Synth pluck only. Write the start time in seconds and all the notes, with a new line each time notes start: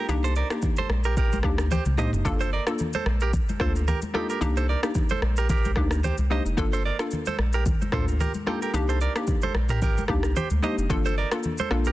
0.09 A#3 D4 D#4 G4
0.50 A#3 D4 D#4 G4
1.44 A#3 D4 D#4 G4
1.98 A#3 D4 D#4 G4
2.25 A#3 D4 F4 A4
2.67 A#3 D4 F4 A4
3.60 A#3 D4 F4 A4
4.14 A#3 D4 F4 A4
4.41 A#3 D4 D#4 G4
4.83 A#3 D4 D#4 G4
5.76 A#3 D4 D#4 G4
6.30 A#3 D4 D#4 G4
6.57 A#3 D4 F4 A4
6.99 A#3 D4 F4 A4
7.92 A#3 D4 F4 A4
8.47 A#3 D4 F4 A4
8.74 A#3 D4 D#4 G4
9.15 A#3 D4 D#4 G4
10.09 A#3 D4 D#4 G4
10.63 A#3 D4 D#4 G4
10.90 A#3 D4 F4 A4
11.31 A#3 D4 F4 A4
11.71 A#3 D4 F4 A4